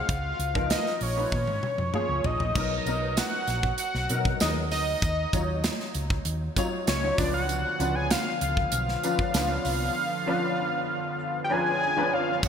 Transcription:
Already playing: G#3 C4 F#4 G#4 A4 C5 F5
0.09 C#2, kick, closed hi-hat
0.39 C#2, closed hi-hat
0.54 F3 B3 D#4 A#4, kick
0.70 D#5, snare, closed hi-hat
0.86 snare
1.01 A#1 C#5, open hi-hat
1.16 F3 B3 D#4 B4
1.32 A#2, kick, high tom
1.47 G#2, high tom
1.63 mid tom
1.78 F2, mid tom
1.93 F3 A#3 C#4 G#4 C#5, mid tom
2.09 C#2
2.24 A#1 D#5, floor tom
2.40 A#1, floor tom
2.55 B1 F#3 B3 D#4 A#4, kick, crash, tambourine
2.86 B1 F#3 B3 D#4 A#4, closed hi-hat, tambourine
3.17 F#5, snare, closed hi-hat, tambourine
3.48 A#1, snare, closed hi-hat, tambourine
3.63 kick
3.78 F#5, closed hi-hat, tambourine
3.95 B1, snare
4.09 B2 F#3 B3 D#4 A#4, closed hi-hat, tambourine
4.25 kick
4.40 D#2 F#3 B3 D#4 G#4 D#5, snare, closed hi-hat, tambourine
4.49 A#4
4.71 D2 D#5, snare, open hi-hat, tambourine
5.02 D#2, kick, closed hi-hat, tambourine
5.33 D#2 F#3 D#4 F4 C#5, kick, closed hi-hat, tambourine
5.64 snare, closed hi-hat, tambourine
5.80 snare
5.95 C#2, closed hi-hat, tambourine
6.10 kick
6.25 D#2, closed hi-hat
6.56 F#3 D#4 F4 C#5, kick, closed hi-hat, tambourine
6.87 C#2 C#5, snare, closed hi-hat, tambourine
7.03 F#3 D#4 F4 C#5
7.17 C#2 F3 C#4 D4 B4 D5, kick, snare, open hi-hat, tambourine
7.34 F#5
7.49 D3 F3 B3, closed hi-hat, tambourine
7.79 C#2 F3 C#4 D4 B4, closed hi-hat, tambourine
7.95 G#5
8.11 F5, snare, closed hi-hat, tambourine
8.41 C#2 F5, closed hi-hat
8.57 kick
8.72 B1, closed hi-hat, tambourine
8.88 snare
9.03 F3 C#4 D4 B4, closed hi-hat, tambourine
9.19 kick
9.34 C#2 F3 C#4 D4 B4, snare, closed hi-hat, tambourine
9.65 C2, open hi-hat, tambourine
10.26 F3 C#4 D4 B4
11.44 G5
11.50 F3 C#4 D4 B4 G#5 A#5
11.81 G#5
11.96 F3 C#4 D4 B4
12.12 C#5 F5
12.43 D#2 D#3 F3 C#4 D#4 F#4 F#5, kick, crash, tambourine

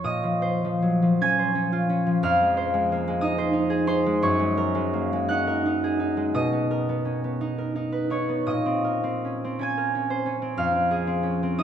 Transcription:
Already playing: F3 A#3 C5 C#5 C#6
0.04 A#2 D#5 D#6
0.23 F3
0.42 C5
0.65 F3
0.82 F#3
1.02 F3
1.21 C#4 G#5 G#6
1.39 C5
1.55 C#4
1.72 F4
1.89 C#4
2.06 F3
2.23 F2 F5 F6
2.41 G#3
2.57 C5
2.74 G#3
2.92 A#3
3.08 G#3
3.21 D#4 D#5 D#6
3.38 C5
3.53 D#4
3.70 G#4
3.87 D#4 C5 C6
4.06 G#3
4.22 F#2 C#5 C#6
4.39 G#3
4.57 A#4
4.75 G#3
4.93 A#3
5.13 G#3
5.29 D#4 F#5 F#6
5.47 A#4
5.66 D#4
5.84 G#4
6.00 D#4
6.17 G#3
6.34 B2 D#5 D#6
6.53 B3
6.71 A#4
6.89 B3
7.05 C#4
7.24 B3
7.41 D#4
7.58 A#4
7.76 D#4
7.92 B4
8.10 D#4 C#5 C#6
8.29 B3
8.46 A#2 D#5 D#6
8.66 C4
8.84 A#4
9.04 C4
9.25 C#4
9.44 C4
9.59 C#4 G#5 G#6
9.78 A#4
9.95 C#4
10.10 C5
10.26 C#4
10.42 C4
10.57 F2 F5 F6
10.75 C4
10.91 G#4
11.07 C4
11.23 C#4
11.43 C4
11.58 D#4 D#5 D#6

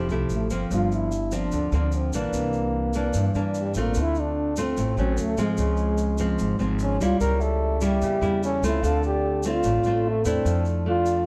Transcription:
Already playing: F3 C4
0.09 C2 A3 E4 G4, shaker
0.29 A1, shaker
0.35 A3
0.50 G1 F3 A#3 C4, shaker
0.54 C4
0.70 G1 G2 F4, shaker
0.92 E4, shaker
1.12 shaker
1.31 F3 A#3 C4 D4, shaker
1.52 D2 D3, shaker
1.72 D2 F3 A#3 C4, shaker
1.92 shaker
1.96 C4
2.12 A#1 E3 A#3 D4, shaker
2.32 C2 C3, shaker
2.53 shaker
2.93 E3 A#3 D4, shaker
3.13 G2, shaker
3.35 G2 E3 A#3 D4, shaker
3.54 shaker
3.60 G3
3.74 A1 A3 C4 F4, shaker
3.80 A#3
3.94 D2 D3, shaker
4.01 E4
4.15 shaker
4.20 D4
4.56 A3 C4 F4, shaker
4.63 C4
4.77 A1 A2, shaker
4.97 A1 F#3 A3 C#4, shaker
5.17 D2, shaker
5.22 A3
5.37 G#2 F3 G#3 C4, shaker
5.42 G#3
5.57 C#2 C#3, shaker
5.77 shaker
5.98 shaker
6.18 F3 G#3 C4, shaker
6.39 G#1 G#2, shaker
6.59 G#1 F3 G#3 C4, shaker
6.78 C#4 G#4, shaker
7.01 C#2 G3 A#3 E4 F4 C#5, shaker
7.20 C#2 C#3 A#4 G5, shaker
7.40 A4 E5, shaker
7.81 G3 A#3 E4 E5, shaker
7.85 G4
8.02 E2 C#3, shaker
8.21 E2 G3 A#3 E4, shaker
8.43 C#4 A4, shaker
8.62 C#2 A3 C4 F4 C#5, shaker
8.67 E4
8.81 D2 D3 F5, shaker
8.85 A4
9.03 G4 D5, shaker
9.43 A3 C4 F4 D5, shaker
9.47 F4
9.63 A1 A2, shaker
9.84 A1 A3 C4 F4, shaker
10.04 F4
10.09 A3
10.24 E2 A3 D4 E4 A4, shaker
10.29 C4
10.45 F2 F3, shaker
10.65 shaker
10.86 A3 D4 F4 D5
11.06 shaker

